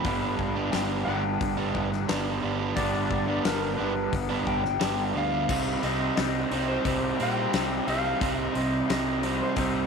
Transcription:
Already playing: B5
0.04 G1 G2 D3 G3 B3 D4, kick, open hi-hat
0.39 G1, kick
0.55 G3 B3 D4
0.71 G1 G2 D3 G3 B3 D4 G5, snare, open hi-hat
1.05 G1 D3 G3 B3 D4 G5
1.10 G2
1.24 muted overdriven electric guitar stroke
1.41 G1, kick, open hi-hat
1.57 G3 B3 D4
1.75 G1, kick
1.91 muted overdriven electric guitar stroke, snare
2.08 G1 G2 D3 G3 B3 D4, snare, open hi-hat
2.42 G1 D3 G3 B3 D4
2.59 G3 B3 D4
2.76 G1 G2 D3 G3 B3 D4 D5, kick, open hi-hat
3.11 kick
3.27 G3 B3 D4
3.45 G1 G2 D3 G3 B3 D4 A#4, snare, open hi-hat
3.77 G1 D3 G3 B3 D4 B4
3.82 G2
3.94 muted overdriven electric guitar stroke
4.12 G1, kick, open hi-hat
4.29 G3 B3 D4
4.47 G1 G5, kick
4.63 muted overdriven electric guitar stroke, snare
4.80 G1 G2 D3 G3 B3 D4, snare, open hi-hat
5.15 D2 D3 G3 B3 D4 F5
5.32 G3 B3 D4
5.49 C2 C3 G3 C4 D#4, kick, crash
5.83 C2 C3 G3 C4 D#4 D#5, open hi-hat
6.17 C2 C3 G3 C4 D#4 D#5, snare, open hi-hat
6.51 C2 C3 G3 C4 D#4, open hi-hat
6.69 C5
6.85 C2 C3 G3 C4 D#4 C5, kick, open hi-hat
7.19 A#2 C3 G3 C4 D#4 G5, open hi-hat
7.53 C2 C3 G3 C4 D#4, snare, open hi-hat
7.87 C2 C3 G3 C4 D#4 F5, open hi-hat
8.20 C2 C3 G3 C4 D#4, kick, open hi-hat
8.42 D#5
8.55 C2 C3 G3 C4 D#4 D#5, open hi-hat
8.89 C2 C3 G3 C4 D#4 D#5, snare, open hi-hat
9.22 C3 G3 C4 D#4, open hi-hat
9.42 C5
9.56 C2 C3 G3 C4 D#4 C5, kick, open hi-hat

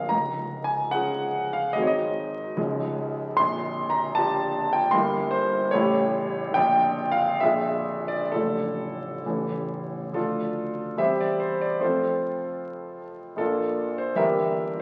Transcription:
Already playing: A#0 A#1 F3 C#4 A#4 F5
0.09 C#1 C#2 A#5
0.64 G#5
0.91 F3 C#4 G#4 F#5
1.53 F5
1.73 G#1 G#2 F#3 C4 G#4 D#5
1.82 C#5
1.87 D#5
2.57 C#1 C#2 F3 C#4 G#4
3.37 A#0 A#1 C6
3.90 A#5
4.15 F3 D4 G4 A5
4.73 G5
4.91 G1 G2 A#3 E4 G4 C6
5.31 C5
5.71 A0 A1 A3 E4 G4 C#5
6.50 A#0
6.54 A#1 F3 D4 F4 G5
7.12 F5
7.40 A#0 A#1 F3 D4 G#4 E5
8.08 D5
8.32 A0 A1 F3 D4 A4
9.25 A0 A1 E3 C#4 A4
10.13 D2 F3 D4 F4 A4
10.97 E2 G3 C4 G4 C5 E5
11.20 D5
11.40 C5
11.61 D5
11.80 F2 F3 A3 C4 F4 A4 C5
13.36 A#1 F3 A#3 D4 F4 A4
13.98 C5
14.15 G1 E3 A#3 D4 G4 A#4 E5

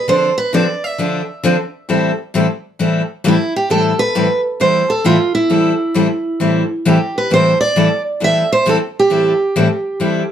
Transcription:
0.08 D3 F3 C4 D4 A4 C5
0.38 B4
0.53 D3 F3 C4 D4 A4 D5
0.84 E5
0.98 D3 F3 C4 D4 A4
1.43 D3 F3 C4 D4 A4
1.89 A2 E3 G3 C4 E4 A4
2.34 A2 E3 G3 C4 E4 A4
2.79 A2 E3 G3 C4 E4 A4
3.24 A2 E3 G3 C4 E4 A4
3.28 E4
3.56 G4
3.70 A2 E3 G3 C4 E4 A4
3.99 B4
4.15 A2 E3 G3 C4 E4 A4
4.60 A2 E3 G3 C4 E4 A4 C5
4.90 A4
5.04 A2 E3 G3 C4 E4 F4 A4
5.35 E4
5.50 A2 E3 G3 C4 E4 A4
5.94 A2 E3 G3 C4 E4 A4
6.40 A2 E3 G3 C4 E4 A4
6.85 A2 E3 G3 C4 E4 G4 A4
7.18 B4
7.30 A2 E3 G3 C4 E4 A4 C5
7.61 D5
7.76 A2 E3 G3 C4 E4 A4
8.20 A2 E3 G3 C4 E4 A4 E5
8.53 C5
8.66 A2 E3 G3 C4 E4 A4
8.99 G4
9.10 A2 E3 G3 C4 E4 A4
9.56 A2 E3 G3 C4 E4 A4
10.00 A2 E3 G3 C4 E4 A4

